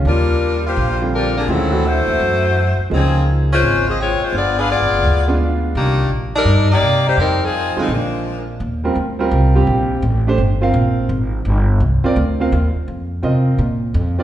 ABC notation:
X:1
M:4/4
L:1/16
Q:"Swing" 1/4=168
K:Cm
V:1 name="Saxophone section"
[G,DFB]6 [B,FGc]4 z2 [G,DFB]2 [F,B,DA]2 | [^F,C=E=A]4 [=A,E^Fc]8- [A,EFc]2 z2 | [F,C_DA]4 z2 [A,DFc]4 [CFAe]2 [A,CF_d]2 [A,DFc]2 | [=B,FAd]2 [DA=Bf]2 [B,FAd]6- [B,FAd] z4 z |
[E,B,DG]4 z2 [G,DEB]4 [B,EGd]4 [B,EGc]2 | [G,CEB]2 [F,CEA]4 [F,A,CE]2 [F,A,B,D]6 z2 | [K:Eb] z16 | z16 |
z16 | z16 |]
V:2 name="Grand piano"
z8 z2 [D,G,CF]6 | [E,A,_DF]2 [=E,=A,=D^F]8 z6 | [F,B,EA]8- [F,B,EA]2 z6 | z8 z2 [A,=B,DF]6 |
z16 | z6 [D,G,CF]2 z8 | [K:Eb] z2 [G,CFB]2 z2 [G,CFB]4 [G,CFG]6 | z2 [=A,DGc]2 z2 [CFBf]6 z4 |
z6 [CFBd]2 z2 [CFBf]2 z4 | z4 [CFBe]4 z6 [CFBd]2 |]
V:3 name="Upright bass" clef=bass
E,,8 B,,,8 | D,,6 E,,2 ^F,,6 z2 | _D,,8 A,,,6 z2 | G,,,4- (3G,,,2 A,,,2 ^F,,,2 D,,8 |
C,,4 B,,,4 G,,4 C,4 | F,,6 z2 B,,,8 | [K:Eb] E,,4 D,,4 C,,4 B,,,4 | =A,,,4 G,,,4 B,,,4 _A,,,4 |
G,,,4 C,,2 z2 D,,4 E,,2 z2 | F,,4 C,4 B,,4 F,,4 |]